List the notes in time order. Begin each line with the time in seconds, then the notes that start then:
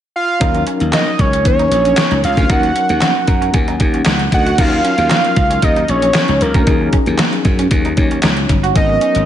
0.16 F5
0.40 D#2 F#3 C#4 D#4 A#4, kick, closed hi-hat
0.55 muted clean electric guitar stroke, closed hi-hat
0.67 C#4, closed hi-hat
0.80 D#2, closed hi-hat
0.93 A#3 D#5, snare, clap, closed hi-hat
1.19 C#2 C#5, muted clean electric guitar stroke, kick, closed hi-hat
1.33 C#4, closed hi-hat
1.45 D#2 C#5, kick, closed hi-hat
1.59 D#4, closed hi-hat
1.71 A#1, muted clean electric guitar stroke, closed hi-hat
1.85 C#4, closed hi-hat
1.97 snare, clap, closed hi-hat
2.11 C#2 D#4, closed hi-hat
2.24 C#2 F5, muted clean electric guitar stroke, closed hi-hat
2.37 D2 C#4, kick, closed hi-hat
2.49 D#2 F#3 C#4 D#4 A#4 F#5, kick, closed hi-hat
2.63 muted clean electric guitar stroke, closed hi-hat
2.76 C#4, closed hi-hat
2.89 D#2, closed hi-hat
3.01 A#3, snare, clap, closed hi-hat
3.27 F#2 A#5, muted clean electric guitar stroke, kick, closed hi-hat
3.42 C#4, closed hi-hat
3.54 D#2 G#5, kick, closed hi-hat
3.68 D#4, closed hi-hat
3.80 D#2 F#5, muted clean electric guitar stroke, kick, closed hi-hat
3.94 C#4, closed hi-hat
4.05 C#2 D#4 F#5, snare, clap, closed hi-hat
4.19 muted clean electric guitar stroke, closed hi-hat
4.32 D2 D#5 F#5, kick, closed hi-hat
4.46 F#4, closed hi-hat
4.57 D#2 F#3 C#4 D#4 A#4 F5, kick, closed hi-hat, crash
4.72 muted clean electric guitar stroke
4.85 C#4, closed hi-hat
4.98 D#2, closed hi-hat
5.10 A#3, snare, clap, closed hi-hat
5.25 closed hi-hat
5.36 C#2, muted clean electric guitar stroke, kick, closed hi-hat
5.50 C#4, closed hi-hat
5.62 D#2 D#5, kick, closed hi-hat
5.76 D#4, closed hi-hat
5.88 A#1 C#5, muted clean electric guitar stroke, closed hi-hat
6.02 C#4, closed hi-hat
6.14 snare, clap, closed hi-hat
6.28 C#2 D#4, closed hi-hat
6.41 C#2 A#4, muted clean electric guitar stroke, closed hi-hat
6.54 D2 C#4, kick, closed hi-hat
6.66 D#2 F#3 C#4 D#4 G#4, kick, closed hi-hat
6.81 muted clean electric guitar stroke
6.93 C#4, kick, closed hi-hat
7.06 D#2, closed hi-hat
7.18 A#3, snare, clap, closed hi-hat
7.33 closed hi-hat
7.45 F#2, muted clean electric guitar stroke, kick, closed hi-hat
7.59 C#4, closed hi-hat
7.71 D#2, kick, closed hi-hat
7.85 D#4, closed hi-hat
7.97 D#2 F#3 C#4 D#4 C#5, muted clean electric guitar stroke, kick, closed hi-hat
8.11 C#4, closed hi-hat
8.23 C#2 D#4, snare, clap, closed hi-hat
8.37 muted clean electric guitar stroke, closed hi-hat
8.49 G1, kick, closed hi-hat
8.63 F#4, closed hi-hat
8.74 G#1 F#3 G#3 B3 C#4 A#4 D#5, kick, closed hi-hat
8.89 muted clean electric guitar stroke
9.01 C#4, closed hi-hat
9.15 G#1, closed hi-hat